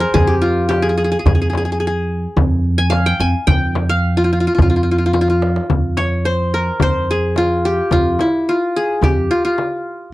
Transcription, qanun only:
Already playing: G#4 C5
0.00 A#4
0.14 G#4
0.27 G4
0.42 F4
0.69 G4
0.82 G#4
0.89 G#4
0.98 G#4
1.04 G#4
1.12 G#4
1.19 G#4
1.26 G#4
1.35 G#4
1.42 G#4
1.50 G#4
1.57 G#4
1.65 G#4
1.72 G#4
1.80 G#4
1.87 G#4
2.78 G#5
2.90 F5
3.06 G5
3.20 G#5
3.47 G5
3.89 F5
4.17 F4
4.24 F4
4.33 F4
4.40 F4
4.47 F4
4.55 F4
4.62 F4
4.70 F4
4.76 F4
4.83 F4
4.91 F4
4.98 F4
5.06 F4
5.13 F4
5.21 F4
5.30 F4
5.97 C#5
6.25 C5
6.54 A#4
6.82 C5
7.11 G#4
7.38 F4
7.65 G4
7.92 F4
8.21 E4
8.49 F4
8.76 G#4
9.03 G4
9.31 F4
9.45 F4

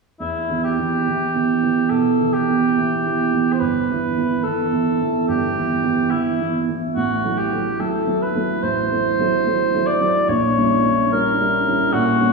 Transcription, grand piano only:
0.20 E2
0.49 E3 B3 E4
0.79 E3 B3 E4
1.07 E3 B3 E4
1.35 E3 B3 E4
1.63 E3 B3 E4
1.91 B2
2.19 E3 B3 E4
2.49 E3 B3 E4
2.77 E3 B3 E4
3.05 E3 B3 E4
3.33 E3 B3 E4
3.61 G1
3.90 E3 B3 E4
4.17 E3 B3 E4
4.45 E3
4.72 E3 B3 E4
5.01 E3 B3 E4
5.29 G1
5.57 E3 B3 E4
5.83 E3 B3 E4
6.11 E3 B3 E4
6.40 E3 B3 E4
6.68 E3 B3 E4
6.96 A1
7.24 F#3 A3 E4
7.52 F#3 A3 E4
7.80 F#3 A3 E4
8.07 F#3 A3 E4
8.35 F#3 A3 E4
8.63 A1
8.91 F#3 A3 E4
9.19 F#3 A3 E4
9.46 F#3 A3 E4
9.74 F#3 A3 E4
10.01 F#3 A3 E4
10.28 A#1
10.57 G3 C#4 E4
10.84 G3 C#4 E4
11.12 G3 C#4 E4
11.40 G3 C#4 E4
11.66 G3 C#4 E4
11.93 A#2
12.20 G3 C#4 E4

